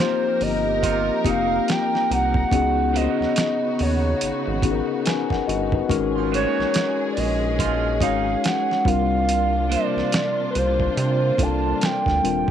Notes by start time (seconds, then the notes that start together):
Already playing: C3 F3 A#3 C4 D#4 F4 G4 A#4 C5
0.00 snare
0.41 G1 D#5, open hi-hat
0.82 C3 A#3 F4, kick, closed hi-hat
1.24 F1 C3 A#3 C4 D#4 F4 G4 F5, kick, closed hi-hat
1.68 G5, snare, closed hi-hat
1.95 snare
2.11 C2 F#5, closed hi-hat
2.34 kick
2.52 C#2 C#3 B3 C#4 D#4 F#4 G#4, kick, closed hi-hat
2.93 A#3 D4 F4 C5 D#5, closed hi-hat
3.09 B3 D#4 F#4 C#5
3.20 D#2, snare
3.36 snare, closed hi-hat
3.79 D#2 C#5, open hi-hat
4.21 G#1, closed hi-hat
4.48 G#1
4.62 B3 C#4 D#4 F#4 G#4, kick, closed hi-hat
4.72 A#4
5.06 B4 G#5, snare, closed hi-hat
5.30 A#4 F#5, kick, snare
5.47 G1 F#4 D#5, closed hi-hat
5.72 D#4 B4, kick
5.88 G#1 G#3 C#4 D#4 F#4 G#4 A#4, kick, closed hi-hat
6.15 F3 C#4 F4
6.32 D#3 A3 C#4 D4 F4 F#4 C5 C#5, closed hi-hat
6.48 A#3 D#4 F#4 C#5
6.59 A#1, snare
6.74 snare, closed hi-hat
7.12 D5
7.17 A#1 D#5, open hi-hat
7.59 F3 C#4 F4, kick, closed hi-hat
8.01 G#1 A#2 F#3 G#3 C#4 D#4 F#4 C#5 F5, kick, closed hi-hat
8.44 F#5, snare, closed hi-hat
8.71 snare
8.85 C2 C3 G3 A#3 C4 D4 F4 A#4 F5, kick, closed hi-hat
9.29 closed hi-hat
9.70 A#3 D4 F4 C5 D5, closed hi-hat
9.96 C2, snare
10.12 snare, closed hi-hat
10.50 B4
10.55 C2 C5, closed hi-hat
10.80 kick
10.97 C3, closed hi-hat
11.38 C2 G3 C4 D4 F4 A4, kick, closed hi-hat
11.42 A5
11.81 G5, snare, closed hi-hat
12.06 D2, kick, snare
12.23 D#1 G3 C4 D4 F4 A#4, closed hi-hat